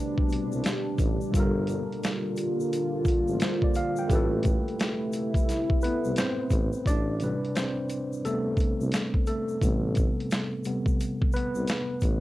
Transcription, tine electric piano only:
Already playing: A3 G4 B4 C5
1.31 G3 F4
1.37 A4 A#4
3.44 C5
3.64 D5
3.76 F5
3.99 G5
4.08 A3 G4
4.13 A4 B4
5.83 B3 B4
6.18 C4 C5
6.87 D4 D5
7.22 C3 G3 B4
7.56 C4 C5
8.25 C3 G3 A3 B3 A4
9.27 A3 A4
9.63 C3 G3 B3
10.66 C3 G3 B3
11.34 B3 B4

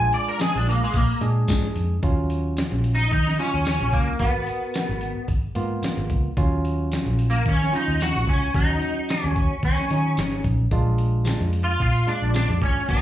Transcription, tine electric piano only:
Already playing: G#3 D4 F4
1.21 G#3 D4 G#4
2.03 F#3 C#4 F4
3.39 F#3 C#4 F4
4.20 B3 F#4 A#4
5.55 A#3 B3 F4
6.37 F#3 C#4 F4
7.72 F#3 C#4 F4
8.54 F#3 C#4 F#4
9.90 F#3 C#4 D#4
10.71 G#3 D4 F4
12.07 G#3 D4 F4
12.88 A#3 B3 F#4

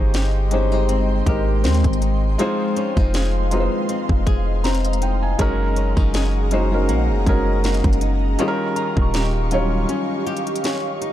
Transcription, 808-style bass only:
Already playing: G1
1.27 G#1
1.64 D#2
1.84 G#1
2.97 F1
4.09 F1
4.27 F1
5.39 F#1
5.97 F#1
6.89 A#1
7.09 F#1
7.26 F#1
7.84 F#1
8.97 D#1

